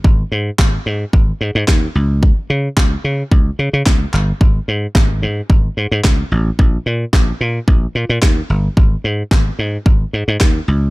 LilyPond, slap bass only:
\new Staff \with { instrumentName = "Slap bass" } { \clef bass \time 4/4 \key c \phrygian \tempo 4 = 110 aes,,8 aes,8 aes,,8 aes,8 aes,,8 aes,16 aes,16 ees,8 des,8~ | des,8 des8 des,8 des8 des,8 des16 des16 des,8 g,,8 | aes,,8 aes,8 aes,,8 aes,8 aes,,8 aes,16 aes,16 des,8 a,,8 | bes,,8 bes,8 bes,,8 bes,8 bes,,8 bes,16 bes,16 ees,8 g,,8 |
aes,,8 aes,8 aes,,8 aes,8 aes,,8 aes,16 aes,16 ees,8 des,8 | }